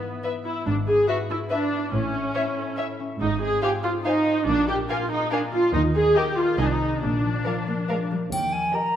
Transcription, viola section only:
0.00 0.24 B3 medium
0.45 0.64 E4 medium
0.66 0.74 D4 medium
0.87 1.08 G#4 medium
1.08 1.16 F#4 medium
1.30 1.38 E4 medium
1.51 1.92 D4 medium
1.94 2.76 C#4 medium
3.20 3.40 D#4 medium
3.41 3.62 G#4 medium
3.62 3.70 G4 medium
3.83 3.91 F4 medium
4.04 4.46 D#4 medium
4.47 4.67 D4 medium
4.68 4.76 G4 medium
4.89 5.10 F4 medium
5.11 5.31 D#4 medium
5.32 5.40 D4 medium
5.53 5.73 F4 medium
5.74 5.82 D#4 medium
5.95 6.16 G#4 medium
6.16 6.38 G4 medium
6.38 6.60 F4 medium
6.59 6.66 D#4 medium
6.66 6.73 D4 medium
6.74 7.03 D#4 medium
7.03 8.09 D4 medium
8.75 8.96 G4 soft

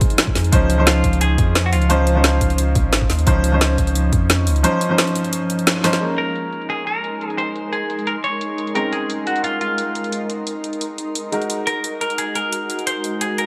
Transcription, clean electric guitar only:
0.87 1.21 F4 loud
1.21 1.66 G#4 loud
1.66 1.72 F#4 medium
1.73 5.63 F4 medium
6.18 6.69 A#4 medium
6.70 6.86 G#4 medium
6.87 7.38 A#4 medium
7.38 7.70 C5 loud
7.72 8.08 G#4 loud
8.07 8.12 A#4 loud
8.24 8.75 C#5 loud
8.75 8.93 A#4 loud
8.93 9.25 G#4 loud
9.27 9.44 F#4 medium
9.44 9.60 F4 medium
9.61 10.26 F4 medium
11.67 12.00 A#4 loud
12.01 12.19 A#4 medium
12.18 12.36 G#4 loud
12.36 12.86 A#4 loud
12.87 13.22 C5 loud
13.21 13.39 G#4 medium
13.38 13.46 A#4 medium

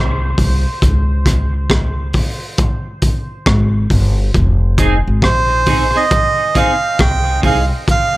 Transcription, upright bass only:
0.00 0.35 C2 medium
0.39 0.63 C2 loud
0.83 2.10 C#2 loud
3.47 3.87 G#1 loud
3.91 4.32 G1 loud
4.35 5.02 F1 loud
5.07 5.22 G#1 loud
5.23 5.90 A#1 medium
7.00 7.40 C2 medium
7.44 7.69 C2 loud

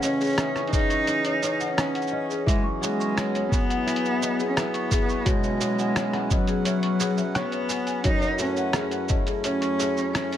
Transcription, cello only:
0.02 0.68 C#4 loud
0.71 1.73 D#4 loud
1.77 2.43 C#4 medium
2.48 2.63 G#3 loud
2.82 3.48 G#3 medium
3.52 4.45 B3 loud
4.49 4.58 C#4 medium
4.56 5.28 B3 medium
5.27 6.33 G#3 loud
6.31 7.38 F#3 loud
7.36 8.06 B3 medium
8.07 8.39 D#4 loud
8.41 9.06 C#4 medium
9.47 10.12 C#4 medium
10.15 10.37 C#4 loud

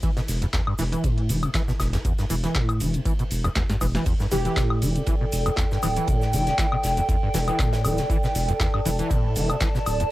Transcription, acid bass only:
0.03 0.11 E3 medium
0.17 0.21 B2 medium
0.42 0.46 E2 loud
0.53 0.61 E2 medium
0.67 0.73 G2 medium
0.79 0.83 E3 loud
0.92 1.05 E3 medium
1.04 1.31 A2 loud
1.29 1.44 E3 medium
1.43 1.49 B2 medium
1.54 1.62 E3 medium
1.68 1.72 B2 medium
1.93 1.97 E2 loud
2.05 2.12 E2 medium
2.18 2.25 G2 medium
2.30 2.34 E3 loud
2.44 2.57 E3 medium
2.55 2.82 A2 loud
2.80 2.96 E3 medium
2.94 3.00 B2 medium
3.06 3.13 E3 medium
3.19 3.23 B2 medium
3.44 3.48 E2 loud
3.56 3.64 E2 medium
3.70 3.76 G2 medium
3.81 3.86 E3 loud
3.95 4.04 E3 medium
4.06 4.14 E2 medium
4.20 4.26 G2 medium
4.32 4.36 E3 loud
4.45 4.58 E3 medium
4.57 4.84 A2 loud
4.82 4.97 E3 medium
4.96 5.02 B2 medium
5.07 5.15 E3 medium
5.21 5.25 B2 medium
5.46 5.50 E2 loud
5.58 5.65 E2 medium
5.71 5.78 G2 medium
5.83 5.87 E3 loud
5.97 6.10 E3 medium
6.08 6.35 A2 loud
6.33 6.48 E3 medium
6.47 6.53 B2 medium
6.59 6.66 E3 medium
6.72 6.76 B2 medium
6.97 7.01 E2 loud
7.09 7.16 E2 medium
7.23 7.29 G2 medium
7.34 7.39 E3 loud
7.48 7.61 E3 medium
7.59 7.86 A2 loud
7.85 8.00 E3 medium
7.98 8.05 B2 medium
8.10 8.17 E3 medium
8.23 8.27 B2 medium
8.49 8.52 E2 loud
8.60 8.68 E2 medium
8.74 8.80 G2 medium
8.85 8.90 E3 loud
8.99 9.12 E3 medium
9.11 9.37 A2 loud
9.36 9.51 E3 medium
9.49 9.56 B2 medium
9.61 9.69 E3 medium
9.75 9.78 B2 medium
10.00 10.04 E2 loud

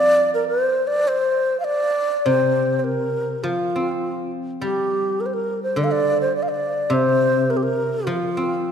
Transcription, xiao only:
0.00 0.30 D5 loud
0.34 0.47 A#4 medium
0.48 0.89 C5 loud
0.87 1.09 D5 loud
1.08 1.59 C5 medium
1.60 1.66 F5 medium
1.65 2.27 D5 loud
2.26 2.79 C5 medium
2.79 2.86 C5 medium
2.84 3.45 A#4 medium
3.44 4.31 F4 medium
4.61 5.22 G4 medium
5.20 5.27 A#4 medium
5.26 5.35 C5 medium
5.34 5.62 A#4 medium
5.63 5.80 C5 medium
5.78 5.86 D5 medium
5.84 5.93 F5 medium
5.92 6.21 D5 medium
6.21 6.34 C5 medium
6.36 6.44 D5 medium
6.43 6.51 F5 medium
6.49 6.95 D5 medium
6.93 7.52 C5 loud
7.50 7.58 A#4 medium
7.57 7.65 G4 medium
7.64 8.08 A#4 medium
8.07 8.72 F4 medium

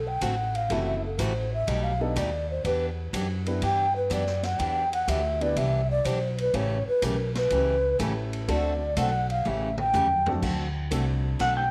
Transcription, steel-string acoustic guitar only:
0.21 0.34 D3 medium
0.21 0.34 A3 medium
0.21 0.34 C4 medium
0.21 0.34 F#4 medium
0.21 0.34 A4 medium
0.71 0.94 C3 medium
0.71 0.94 E3 medium
0.71 0.94 A3 medium
0.71 0.94 E4 medium
0.71 0.94 F#4 medium
1.19 1.31 C3 medium
1.19 1.32 E3 medium
1.19 1.32 A3 medium
1.19 1.32 E4 medium
1.19 1.32 F#4 medium
1.67 1.91 B2 medium
1.67 1.91 G3 medium
1.67 1.91 A3 medium
1.67 1.91 D#4 medium
1.67 1.91 G4 medium
2.16 2.28 B2 medium
2.16 2.28 G3 medium
2.16 2.29 A3 medium
2.16 2.29 D#4 medium
2.16 2.29 G4 medium
2.65 2.88 E3 medium
2.65 2.88 B3 medium
2.65 2.89 D4 medium
2.65 2.89 G4 medium
3.13 3.26 E3 medium
3.13 3.26 B3 medium
3.13 3.26 D4 medium
3.13 3.26 G4 medium
3.62 3.86 E3 medium
3.62 3.86 B3 medium
3.62 3.86 D4 medium
3.62 3.86 G4 medium
4.10 4.23 E3 medium
4.10 4.23 B3 medium
4.10 4.23 D4 medium
4.10 4.23 G4 medium
4.59 4.82 E3 medium
4.59 4.83 B3 medium
4.59 4.83 D4 medium
4.59 4.83 G4 medium
5.08 5.20 E3 medium
5.08 5.20 B3 medium
5.08 5.21 D4 medium
5.08 5.21 G4 medium
5.56 5.80 E3 medium
5.56 5.80 B3 medium
5.56 5.80 D4 medium
5.56 5.81 G4 medium
6.05 6.17 E3 medium
6.05 6.18 B3 medium
6.05 6.18 D4 medium
6.05 6.18 G4 medium
6.54 6.77 C#3 medium
6.54 6.77 E3 medium
6.54 6.78 A3 medium
6.54 6.78 C#4 medium
6.54 6.78 G4 medium
7.02 7.15 C#3 medium
7.02 7.15 E3 medium
7.02 7.15 A3 medium
7.02 7.15 C#4 medium
7.02 7.15 G4 medium
7.51 7.75 C#3 medium
7.51 7.75 E3 medium
7.51 7.75 A3 medium
7.51 7.75 C#4 medium
7.51 7.75 G4 medium
7.99 8.12 C#3 medium
7.99 8.12 E3 medium
7.99 8.12 A3 medium
7.99 8.12 C#4 medium
7.99 8.12 G4 medium
8.48 8.72 D3 medium
8.48 8.72 A3 medium
8.48 8.72 C4 medium
8.48 8.72 F#4 medium
8.48 8.72 A4 medium
8.97 9.09 D3 medium
8.97 9.09 A3 medium
8.97 9.10 C4 medium
8.97 9.10 F#4 medium
8.97 9.10 A4 medium
9.45 9.69 C#3 medium
9.45 9.69 E3 medium
9.45 9.69 A3 medium
9.45 9.69 C#4 medium
9.45 9.69 G4 medium
9.93 10.06 C#3 medium
9.93 10.06 E3 medium
9.93 10.06 A3 medium
9.93 10.07 C#4 medium
9.93 10.07 G4 medium
10.42 10.66 D3 medium
10.42 10.66 A3 medium
10.42 10.66 C4 medium
10.42 10.66 F#4 medium
10.42 10.66 A4 medium
10.91 11.03 D3 medium
10.91 11.04 A3 medium
10.91 11.04 C4 medium
10.91 11.04 F#4 medium
10.91 11.04 A4 medium
11.39 11.63 D3 medium
11.39 11.63 A3 medium
11.39 11.63 C4 medium
11.39 11.63 F#4 medium
11.39 11.63 A4 medium

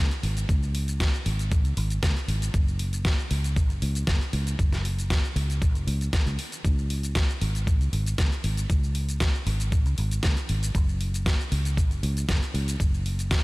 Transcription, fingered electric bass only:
0.23 0.44 G#1 medium
0.49 1.10 C#2 loud
1.26 1.65 G#1 loud
1.65 1.75 C#2 loud
1.77 1.98 G#1 medium
2.03 2.14 C#2 medium
2.28 2.49 G#1 medium
2.54 3.15 F#1 medium
3.31 3.70 C#2 loud
3.70 3.80 F#1 loud
3.82 4.03 C#2 medium
4.08 4.19 F#1 medium
4.33 4.54 C#2 medium
4.59 5.20 F#1 loud
5.36 5.75 C#2 loud
5.75 5.85 F#1 loud
5.87 6.08 C#2 medium
6.26 6.36 C#2 medium
6.65 7.25 C#2 medium
7.42 7.81 G#1 loud
7.81 7.90 C#2 loud
7.93 8.13 G#1 medium
8.18 8.29 C#2 medium
8.44 8.65 G#1 medium
8.70 9.30 C#2 medium
9.46 9.86 G#1 loud
9.86 9.96 C#2 loud
9.98 10.19 G#1 medium
10.23 10.34 C#2 medium
10.49 10.70 G#1 medium
10.75 11.35 F#1 loud
11.52 11.91 C#2 loud
11.91 12.00 F#1 loud
12.03 12.24 C#2 medium
12.29 12.39 F#1 medium
12.54 12.75 C#2 medium
12.80 13.40 F#1 loud

